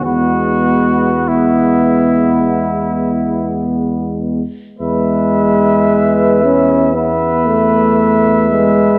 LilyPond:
<<
  \new Staff \with { instrumentName = "Flugelhorn" } { \time 4/4 \key e \major \tempo 4 = 52 fis'4 e'2 r4 | e''2 e''2 | }
  \new Staff \with { instrumentName = "Trombone section" } { \time 4/4 \key e \major b2.~ b8 r8 | b'2 b'2 | }
  \new Staff \with { instrumentName = "French horn section" } { \time 4/4 \key e \major b4 b2~ b8 r8 | b'2 b'2 | }
  \new Staff \with { instrumentName = "Trombone" } { \clef bass \time 4/4 \key e \major gis4 gis2~ gis8 r8 | gis4. cis'8 b8 a4 gis8 | }
  \new Staff \with { instrumentName = "Tuba" } { \clef bass \time 4/4 \key e \major e,2.~ e,8 r8 | e,1 | }
>>